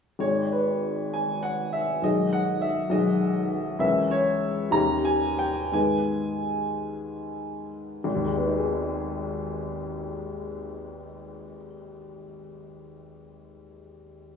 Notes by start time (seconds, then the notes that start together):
0.19 G#1 D#3 G#3 G#4 C#5
0.52 B4
1.14 G#5
1.43 F#5
1.73 E5
2.02 B1 D#3 G#3 G#4 D#5
2.33 F#5
2.62 E5
2.90 B1 D#3 G#3 G#4 D#5
3.79 C#2 E3 C#4 A#4 E5
4.11 C#5
4.71 D#2 D#3 C#4 G4 A#5
5.05 G#5
5.39 G5
5.72 G#2 D#3 B3 G#4 G#5
8.04 G#1
8.15 D#2
8.25 G#3
8.36 B3
8.47 D#4
8.58 G#4